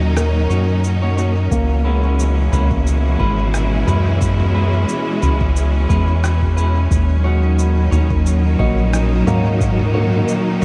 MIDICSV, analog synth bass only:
0, 0, Header, 1, 2, 480
1, 0, Start_track
1, 0, Tempo, 674157
1, 1079, Time_signature, 4, 2, 24, 8
1, 7582, End_track
2, 0, Start_track
2, 0, Title_t, "Analog synth bass"
2, 0, Program_c, 0, 38
2, 0, Note_on_c, 0, 39, 93
2, 338, Note_off_c, 0, 39, 0
2, 357, Note_on_c, 0, 42, 80
2, 1057, Note_off_c, 0, 42, 0
2, 1077, Note_on_c, 0, 37, 97
2, 1777, Note_off_c, 0, 37, 0
2, 1797, Note_on_c, 0, 37, 95
2, 2257, Note_off_c, 0, 37, 0
2, 2278, Note_on_c, 0, 32, 104
2, 2738, Note_off_c, 0, 32, 0
2, 2759, Note_on_c, 0, 42, 95
2, 3458, Note_off_c, 0, 42, 0
2, 3720, Note_on_c, 0, 37, 99
2, 4179, Note_off_c, 0, 37, 0
2, 4199, Note_on_c, 0, 40, 82
2, 4898, Note_off_c, 0, 40, 0
2, 4918, Note_on_c, 0, 39, 97
2, 5618, Note_off_c, 0, 39, 0
2, 5637, Note_on_c, 0, 39, 94
2, 6097, Note_off_c, 0, 39, 0
2, 6119, Note_on_c, 0, 34, 102
2, 6578, Note_off_c, 0, 34, 0
2, 6600, Note_on_c, 0, 44, 95
2, 7299, Note_off_c, 0, 44, 0
2, 7582, End_track
0, 0, End_of_file